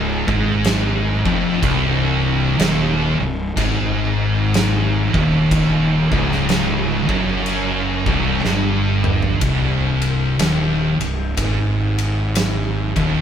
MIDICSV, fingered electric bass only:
0, 0, Header, 1, 2, 480
1, 0, Start_track
1, 0, Tempo, 975610
1, 798, Time_signature, 4, 2, 24, 8
1, 6501, End_track
2, 0, Start_track
2, 0, Title_t, "Fingered electric bass"
2, 0, Program_c, 0, 33
2, 0, Note_on_c, 0, 25, 102
2, 117, Note_off_c, 0, 25, 0
2, 136, Note_on_c, 0, 32, 100
2, 596, Note_off_c, 0, 32, 0
2, 615, Note_on_c, 0, 29, 101
2, 785, Note_off_c, 0, 29, 0
2, 799, Note_on_c, 0, 24, 89
2, 1258, Note_off_c, 0, 24, 0
2, 1272, Note_on_c, 0, 27, 110
2, 1552, Note_off_c, 0, 27, 0
2, 1569, Note_on_c, 0, 24, 90
2, 1741, Note_off_c, 0, 24, 0
2, 1756, Note_on_c, 0, 32, 111
2, 2512, Note_off_c, 0, 32, 0
2, 2529, Note_on_c, 0, 27, 94
2, 2990, Note_off_c, 0, 27, 0
2, 3009, Note_on_c, 0, 25, 91
2, 3470, Note_off_c, 0, 25, 0
2, 3487, Note_on_c, 0, 30, 100
2, 3949, Note_off_c, 0, 30, 0
2, 3967, Note_on_c, 0, 24, 92
2, 4139, Note_off_c, 0, 24, 0
2, 4150, Note_on_c, 0, 31, 98
2, 4612, Note_off_c, 0, 31, 0
2, 4631, Note_on_c, 0, 24, 83
2, 5093, Note_off_c, 0, 24, 0
2, 5110, Note_on_c, 0, 27, 103
2, 5391, Note_off_c, 0, 27, 0
2, 5407, Note_on_c, 0, 24, 77
2, 5580, Note_off_c, 0, 24, 0
2, 5597, Note_on_c, 0, 32, 105
2, 6357, Note_off_c, 0, 32, 0
2, 6376, Note_on_c, 0, 27, 104
2, 6501, Note_off_c, 0, 27, 0
2, 6501, End_track
0, 0, End_of_file